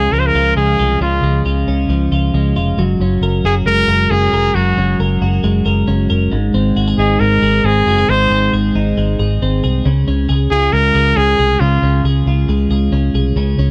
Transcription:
0.00 1.00 C#3 medium
0.00 0.12 F3 medium
0.00 0.57 G#3 medium
0.00 1.68 C#4 medium
0.00 0.34 F4 medium
0.00 0.14 G#4 medium
0.12 0.31 C#2 medium
0.12 1.89 F3 medium
0.12 0.21 A#4 medium
0.19 0.28 C5 medium
0.26 0.56 A#4 medium
0.35 0.53 C#2 loud
0.35 0.78 F4 medium
0.57 0.75 C#2 medium
0.57 1.23 G#3 medium
0.57 0.98 G#4 medium
0.79 0.97 C2 medium
0.79 1.44 F4 medium
1.01 1.19 C#2 medium
1.01 2.78 C#3 medium
1.01 1.43 F4 medium
1.23 1.41 C#2 medium
1.23 2.34 G#3 medium
1.45 1.63 C#2 medium
1.45 2.11 F4 medium
1.68 1.86 C#2 medium
1.68 3.01 C#4 medium
1.89 2.07 C#2 medium
1.89 2.83 F3 medium
2.12 2.30 C#2 medium
2.12 2.55 F4 medium
2.34 2.52 C#2 loud
2.34 3.01 G#3 medium
2.56 2.74 F1 medium
2.56 2.83 F4 medium
2.78 2.96 F#1 medium
2.78 4.55 F#3 medium
3.00 3.18 F#1 medium
3.00 4.10 C#4 medium
3.21 3.40 F#1 medium
3.21 3.88 A#4 medium
3.44 3.62 F#1 medium
3.44 5.21 F#4 medium
3.44 3.55 G#4 medium
3.66 3.84 F#1 medium
3.66 5.43 G#3 medium
3.66 4.12 A#4 loud
3.88 4.06 F#1 loud
3.88 4.33 A#4 medium
4.10 4.29 F#1 loud
4.10 4.77 C#4 medium
4.10 4.56 G#4 medium
4.33 4.51 F1 medium
4.33 4.99 A#4 medium
4.55 4.73 F#1 medium
4.55 6.32 F#3 medium
4.55 4.99 F#4 medium
4.77 4.95 F#1 medium
4.77 5.86 C#4 medium
5.00 5.18 F#1 loud
5.00 5.64 A#4 medium
5.21 5.40 F#1 medium
5.21 6.37 F#4 medium
5.43 5.62 F#1 loud
5.43 6.80 G#3 medium
5.65 5.84 F#1 loud
5.65 6.09 A#4 medium
5.88 6.06 F#1 medium
5.88 6.36 C#4 medium
6.10 6.28 F#1 medium
6.10 6.36 A#4 medium
6.32 6.50 G#1 loud
6.32 8.08 G#2 medium
6.54 6.72 G#1 loud
6.54 7.63 C4 medium
6.76 6.94 G#1 medium
6.76 6.88 F#4 medium
6.88 7.42 G#4 medium
6.98 7.16 G#1 medium
6.98 8.74 D#4 medium
6.98 7.21 G#4 medium
7.20 7.39 G#1 loud
7.20 8.97 G#3 medium
7.20 7.67 A#4 medium
7.42 7.60 G#1 medium
7.42 7.87 G#4 medium
7.64 7.82 G#1 loud
7.64 8.30 C4 medium
7.64 8.12 G#4 medium
7.87 8.05 F#1 medium
7.87 7.98 F#4 medium
7.98 8.52 G#4 soft
8.09 8.27 G#1 medium
8.09 9.86 G#2 medium
8.09 8.54 C5 medium
8.30 8.49 G#1 medium
8.30 9.41 C4 medium
8.53 8.71 G#1 medium
8.53 9.19 G#4 medium
8.75 8.93 G#1 medium
8.75 9.90 D#4 medium
8.97 9.15 G#1 medium
8.97 10.73 G#3 medium
9.19 9.37 G#1 medium
9.19 9.63 G#4 medium
9.42 9.60 G#1 medium
9.42 9.90 C4 medium
9.64 9.82 C2 medium
9.64 10.29 G#4 medium
9.85 10.04 C#2 loud
9.85 11.60 C#3 medium
10.08 10.26 C#2 medium
10.08 11.16 C#4 medium
10.29 10.48 C#2 medium
10.29 10.95 G#4 medium
10.51 10.70 C#2 medium
10.51 12.26 F4 medium
10.51 10.74 G#4 medium
10.73 10.91 C#2 loud
10.73 12.49 G#3 medium
10.73 11.18 A#4 loud
10.95 11.13 C#2 loud
10.95 11.39 G#4 medium
11.16 11.35 C#2 loud
11.16 11.83 C#4 medium
11.16 11.62 G#4 medium
11.39 11.57 C2 medium
11.39 12.05 G#4 medium
11.60 11.79 C#2 loud
11.60 13.36 C#3 medium
11.60 12.05 F4 medium
11.82 12.01 C#2 medium
11.82 12.92 C#4 medium
12.04 12.23 C#2 medium
12.04 12.70 G#4 medium
12.26 12.45 C#2 medium
12.26 13.71 F4 medium
12.48 12.67 C#2 loud
12.48 13.71 G#3 medium
12.70 12.89 C#2 loud
12.70 13.15 G#4 medium
12.92 13.11 C#2 medium
12.92 13.59 C#4 medium
13.14 13.33 C2 medium
13.14 13.71 G#4 medium
13.36 13.55 C#2 loud
13.36 13.71 C#3 medium
13.58 13.71 C#2 medium
13.58 13.71 C#4 medium

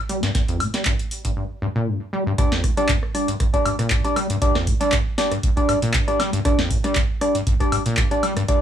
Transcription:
0.09 0.21 G3 loud
0.09 open hi-hat medium
0.23 0.30 G2 loud
0.23 snare medium
0.23 closed hi-hat medium
0.35 0.42 G2 medium
0.35 kick loud
0.35 snare medium
0.35 closed hi-hat medium
0.48 0.62 F2 loud
0.48 closed hi-hat soft
0.60 0.68 A#2 medium
0.60 open hi-hat loud
0.60 high woodblock medium
0.74 0.84 G3 medium
0.74 snare medium
0.74 closed hi-hat medium
0.85 0.93 G2 medium
0.85 kick loud
0.85 clap loud
0.85 closed hi-hat medium
0.99 closed hi-hat soft
1.11 open hi-hat medium
1.25 1.31 G2 medium
1.25 kick medium
1.25 closed hi-hat medium
1.37 1.44 G2 medium
1.62 1.67 G2 loud
1.76 1.89 A#2 loud
1.88 1.99 G2 medium
2.13 2.24 G3 loud
2.27 2.33 G2 loud
2.38 2.46 G2 medium
2.38 2.53 G3 medium
2.38 2.53 D4 medium
2.38 2.53 D5 loud
2.38 kick loud
2.38 closed hi-hat medium
2.52 2.65 F2 loud
2.52 snare medium
2.64 2.71 A#2 medium
2.64 kick medium
2.64 cross-stick medium
2.64 open hi-hat loud
2.77 2.87 G3 medium
2.77 2.90 G3 loud
2.77 2.90 D4 medium
2.77 2.90 D5 loud
2.77 closed hi-hat medium
2.89 2.97 G2 loud
2.89 kick loud
2.89 clap loud
2.89 closed hi-hat medium
3.03 cross-stick medium
3.15 3.29 G3 medium
3.15 3.29 D4 medium
3.15 3.29 D5 loud
3.15 open hi-hat medium
3.28 3.35 G2 medium
3.28 closed hi-hat medium
3.40 3.47 G2 medium
3.40 kick loud
3.40 cross-stick medium
3.40 closed hi-hat medium
3.54 3.76 G3 medium
3.54 3.76 D4 medium
3.54 3.76 D5 loud
3.54 kick medium
3.54 closed hi-hat soft
3.65 3.70 G2 loud
3.65 open hi-hat loud
3.65 high woodblock medium
3.79 3.92 A#2 loud
3.79 cross-stick medium
3.79 closed hi-hat medium
3.90 4.02 G2 medium
3.90 kick loud
3.90 clap loud
3.90 closed hi-hat medium
4.04 4.18 G3 medium
4.04 4.18 D4 medium
4.04 4.18 D5 medium
4.04 closed hi-hat soft
4.16 4.28 G3 medium
4.16 cross-stick medium
4.16 open hi-hat loud
4.16 high woodblock medium
4.30 4.36 G2 loud
4.30 closed hi-hat medium
4.42 4.49 G2 medium
4.42 4.56 G3 medium
4.42 4.56 D4 medium
4.42 4.56 D5 loud
4.42 kick loud
4.42 closed hi-hat medium
4.55 4.69 F2 loud
4.55 cross-stick medium
4.55 snare medium
4.67 4.75 A#2 medium
4.67 kick medium
4.67 open hi-hat loud
4.81 4.90 G3 medium
4.81 4.94 G3 loud
4.81 4.94 D4 medium
4.81 4.94 D5 loud
4.81 closed hi-hat medium
4.92 5.00 G2 medium
4.92 kick loud
4.92 cross-stick medium
4.92 clap loud
4.92 closed hi-hat medium
5.18 5.33 G3 medium
5.18 5.33 D4 medium
5.18 5.33 D5 loud
5.18 snare medium
5.18 open hi-hat loud
5.32 5.38 G2 medium
5.32 cross-stick medium
5.32 closed hi-hat medium
5.43 5.51 G2 medium
5.43 kick loud
5.43 closed hi-hat medium
5.57 5.79 G3 medium
5.57 5.79 D4 medium
5.57 5.79 D5 loud
5.57 kick medium
5.57 closed hi-hat soft
5.69 5.73 G2 loud
5.69 cross-stick medium
5.69 open hi-hat loud
5.69 high woodblock medium
5.82 5.96 A#2 loud
5.82 closed hi-hat medium
5.94 6.05 G2 medium
5.94 kick loud
5.94 clap loud
5.94 closed hi-hat medium
6.08 6.21 G3 medium
6.08 6.21 D4 medium
6.08 6.21 D5 medium
6.08 cross-stick medium
6.08 closed hi-hat soft
6.20 6.31 G3 loud
6.20 snare medium
6.20 open hi-hat loud
6.20 high woodblock medium
6.33 6.40 G2 loud
6.33 closed hi-hat medium
6.45 6.53 G2 medium
6.45 6.60 G3 medium
6.45 6.60 D4 medium
6.45 6.60 D5 loud
6.45 kick loud
6.45 cross-stick medium
6.45 closed hi-hat medium
6.59 6.72 F2 loud
6.59 snare medium
6.70 6.78 A#2 medium
6.70 kick medium
6.70 open hi-hat loud
6.84 6.94 G3 medium
6.84 6.97 G3 loud
6.84 6.97 D4 medium
6.84 6.97 D5 loud
6.84 cross-stick medium
6.84 closed hi-hat medium
6.95 7.03 G2 medium
6.95 kick loud
6.95 clap loud
6.95 closed hi-hat medium
7.21 7.36 G3 medium
7.21 7.36 D4 medium
7.21 7.36 D5 loud
7.21 cross-stick medium
7.21 open hi-hat medium
7.35 7.41 G2 medium
7.35 closed hi-hat medium
7.47 7.54 G2 medium
7.47 kick loud
7.47 closed hi-hat medium
7.60 7.82 G3 medium
7.60 7.82 D4 medium
7.60 7.82 D5 loud
7.60 kick medium
7.60 cross-stick medium
7.60 closed hi-hat soft
7.72 7.77 G2 loud
7.72 open hi-hat loud
7.72 high woodblock medium
7.86 7.99 A#2 loud
7.86 closed hi-hat medium
7.97 8.09 G2 medium
7.97 kick loud
7.97 cross-stick medium
7.97 clap loud
7.97 closed hi-hat medium
8.11 8.24 G3 medium
8.11 8.24 D4 medium
8.11 8.24 D5 medium
8.11 closed hi-hat soft
8.23 8.34 G3 loud
8.23 open hi-hat loud
8.23 high woodblock medium
8.37 8.43 G2 loud
8.37 cross-stick medium
8.37 closed hi-hat medium
8.48 8.56 G2 medium
8.48 8.62 G3 loud
8.48 8.62 D4 medium
8.48 8.62 D5 loud
8.48 kick loud
8.48 closed hi-hat medium

